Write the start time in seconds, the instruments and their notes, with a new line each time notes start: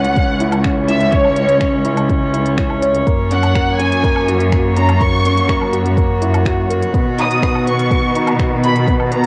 Already playing: cello section C#2, felt piano C#4 E4 C#5, string quartet C#4, violin section F#5
0.04 closed hi-hat
0.12 string quartet C#5
0.16 felt piano C#4, kick, closed hi-hat
0.40 felt piano E4, closed hi-hat
0.52 closed hi-hat, low woodblock
0.64 felt piano C#4, finger snap, kick, closed hi-hat
0.88 felt piano E4, violin section E5, closed hi-hat
1.01 closed hi-hat
1.12 felt piano C#4, violin section C#5, kick, closed hi-hat
1.25 low woodblock
1.37 felt piano C#5, closed hi-hat
1.49 closed hi-hat
1.61 felt piano C#4, finger snap, kick, closed hi-hat
1.85 felt piano E4, closed hi-hat
1.97 closed hi-hat, low woodblock
2.10 felt piano C#4, kick, closed hi-hat
2.34 felt piano E4, closed hi-hat
2.46 closed hi-hat
2.58 felt piano C#4, finger snap, kick, closed hi-hat
2.70 low woodblock
2.82 felt piano C#5, closed hi-hat
2.95 closed hi-hat
3.06 cello section F#2, felt piano A#3, kick, closed hi-hat
3.30 felt piano C#4, violin section F#5, closed hi-hat
3.43 closed hi-hat, low woodblock
3.53 string quartet A#3, felt piano A#3, finger snap, kick, closed hi-hat
3.79 felt piano C#4, violin section G#5, closed hi-hat
3.92 closed hi-hat
4.03 felt piano A#3, kick, closed hi-hat
4.16 low woodblock
4.20 string quartet F#4
4.28 felt piano F#4, closed hi-hat
4.40 closed hi-hat
4.52 felt piano A#3, finger snap, kick, closed hi-hat
4.76 felt piano C#4, violin section A#5, closed hi-hat
4.89 closed hi-hat, low woodblock
5.00 felt piano A#3, violin section C#6, kick, closed hi-hat
5.25 felt piano C#4, closed hi-hat
5.37 closed hi-hat
5.49 felt piano A#3, finger snap, kick, closed hi-hat
5.61 low woodblock
5.73 felt piano F#4, closed hi-hat
5.86 closed hi-hat
5.97 felt piano A#3, kick, closed hi-hat
6.22 felt piano E4, closed hi-hat
6.34 closed hi-hat, low woodblock
6.46 felt piano F#4, finger snap, kick, closed hi-hat
6.70 felt piano A#4, closed hi-hat
6.82 closed hi-hat
6.94 cello section B2, string quartet D#3, felt piano B3, kick, closed hi-hat
7.18 felt piano D#4, violin section D#6, closed hi-hat
7.31 closed hi-hat
7.41 string quartet B3, felt piano B3, finger snap, kick, closed hi-hat
7.55 low woodblock
7.67 felt piano B4, violin section C#6, closed hi-hat
7.79 closed hi-hat
7.91 felt piano B3, kick, closed hi-hat
8.15 felt piano D#4, closed hi-hat
8.27 closed hi-hat, low woodblock
8.39 felt piano B3, finger snap, kick, closed hi-hat
8.63 felt piano D#4, violin section B5, closed hi-hat
8.69 string quartet B4
8.76 closed hi-hat
8.88 felt piano B3, kick, closed hi-hat
9.00 low woodblock
9.11 felt piano B4, violin section A#5, closed hi-hat